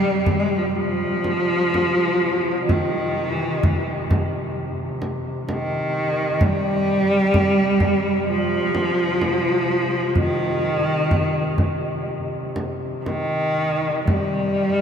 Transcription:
Already playing: duduk C3, cello G3
0.26 frame drum
0.39 cello G#3
0.49 cello G3
0.57 cello F3
0.65 cello G3
0.75 cello F3
1.24 frame drum
1.74 frame drum
2.68 cello D#3, frame drum
3.33 cello E3
3.51 cello D#3
3.63 frame drum
3.70 cello E3
3.88 cello D#3
4.11 frame drum
5.02 frame drum
5.49 cello D#3, frame drum
6.41 cello G3, frame drum
7.34 frame drum
7.80 frame drum
8.28 cello F3
8.75 frame drum
9.21 frame drum
10.15 cello D#3, frame drum
11.11 frame drum
11.58 frame drum
12.56 frame drum
13.05 cello D#3, frame drum
14.06 duduk C3, cello G3, frame drum

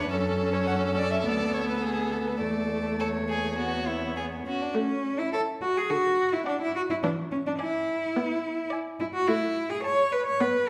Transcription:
0.10 cello F#2, viola C#4, violin A4
0.53 violin C#5
0.67 violin F#5
0.98 violin D5
1.11 violin E5
1.24 cello D2, viola B3, violin D5
1.54 violin C#5
1.68 violin B4
1.83 violin G#4
2.12 violin A4
2.27 violin B4
2.40 cello E2, viola A3, violin D5
3.00 violin A4 C#5
3.29 violin G#4
3.58 viola B3, violin F#4
3.88 violin E4
4.17 violin G#4
4.46 cello C#4, violin F#4
4.61 cello D4
4.75 viola A3, cello C#4
5.19 cello E4
5.33 cello A4, violin C#5 E5
5.62 cello F#4
5.77 cello G#4
5.90 viola D3, cello F#4
6.33 cello E4
6.46 cello D4, violin D5 F#5
6.61 cello E4
6.76 cello F#4
6.90 cello E4
7.03 viola E3, cello D4
7.32 cello C#4
7.47 cello D4
7.59 cello E4, violin D5 G#5
8.17 viola B3
8.70 violin D5 G#5
9.00 cello E4
9.14 cello F#4
9.28 viola A3, cello E4
9.70 cello G#4
9.84 cello C#5, violin C#5 A5
10.12 cello B4
10.26 cello C#5
10.40 viola B3, cello B4

